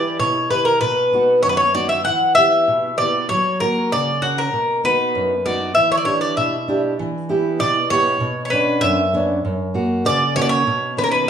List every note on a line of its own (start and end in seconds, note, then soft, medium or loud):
0.00 0.17 E3 medium
0.00 0.37 E4 soft
0.00 0.37 G4 soft
0.00 0.38 B4 soft
0.00 0.17 D5 medium
0.19 0.79 B2 medium
0.19 0.50 C#5 medium
0.50 0.75 E4 soft
0.50 0.75 G4 soft
0.50 0.64 B4 medium
0.50 0.75 B4 soft
0.65 0.80 A#4 medium
0.81 1.41 B2 medium
0.81 1.42 B4 medium
1.13 1.62 B3 soft
1.13 1.63 D#4 soft
1.13 1.63 F#4 soft
1.43 2.03 F#2 medium
1.43 1.49 C#5 medium
1.49 1.57 B4 medium
1.57 1.73 C#5 medium
1.74 1.99 B3 soft
1.74 1.99 D#4 soft
1.74 1.99 F#4 soft
1.74 1.89 D5 medium
1.89 2.04 E5 medium
2.05 2.66 E3 medium
2.05 2.34 F#5 medium
2.35 2.86 B3 soft
2.35 2.86 E4 soft
2.35 2.86 G4 soft
2.35 2.97 E5 medium
2.68 3.27 B2 medium
2.98 3.24 B3 soft
2.98 3.24 E4 soft
2.98 3.24 G4 soft
2.98 3.27 D5 medium
3.29 3.90 F#3 medium
3.29 3.58 C#5 medium
3.60 4.10 A#3 soft
3.60 4.10 F#4 soft
3.60 3.92 A#4 medium
3.60 4.11 A#4 medium
3.92 4.52 C#3 medium
3.92 4.23 D5 medium
4.22 4.47 C#4 soft
4.22 4.46 F#4 soft
4.22 4.38 F#4 medium
4.22 4.47 A#4 soft
4.38 4.81 A#4 medium
4.53 5.13 B2 medium
4.84 5.33 B3 soft
4.84 5.33 D#4 soft
4.84 5.33 F#4 soft
4.84 5.48 B4 medium
5.15 5.74 F#2 medium
5.45 5.70 B3 soft
5.45 5.70 D#4 soft
5.45 5.71 F#4 medium
5.45 5.74 D5 medium
5.75 6.36 E3 medium
5.75 5.90 E5 medium
5.92 5.97 C#5 medium
5.97 6.05 D5 medium
6.05 6.55 D4 soft
6.05 6.56 E4 soft
6.05 6.56 G4 soft
6.05 6.21 C#5 medium
6.21 6.36 D5 medium
6.37 6.97 B2 medium
6.37 6.80 E5 medium
6.68 6.93 D4 soft
6.68 6.93 E4 soft
6.68 6.93 G4 medium
6.99 7.59 E3 medium
7.29 7.78 B3 soft
7.29 7.79 E4 soft
7.29 7.79 G4 medium
7.60 8.19 B2 medium
7.60 7.90 D5 medium
7.90 8.15 B3 soft
7.90 8.16 E4 soft
7.90 8.16 G4 medium
7.90 8.41 C#5 medium
8.20 8.80 B2 medium
8.45 8.52 C#5 medium
8.50 9.01 B3 soft
8.50 9.01 C#4 soft
8.50 9.02 D4 medium
8.50 8.83 B4 medium
8.81 9.42 F#2 medium
8.81 9.24 E5 loud
9.13 9.38 B3 soft
9.13 9.38 C#4 soft
9.13 9.38 D4 medium
9.45 10.03 F#2 medium
9.74 10.23 A#3 medium
9.74 10.24 F#4 medium
10.05 10.64 C#3 medium
10.05 10.34 D5 medium
10.36 10.60 A#3 soft
10.36 10.61 C#4 soft
10.36 10.60 F#4 medium
10.36 10.41 C#5 medium
10.42 10.49 D5 medium
10.49 10.93 C#5 medium
10.67 11.25 B2 medium
10.97 11.30 D#3 medium
10.97 11.30 B3 soft
10.97 11.30 C#4 soft
10.97 11.03 B4 medium
11.04 11.10 A#4 medium
11.11 11.28 B4 medium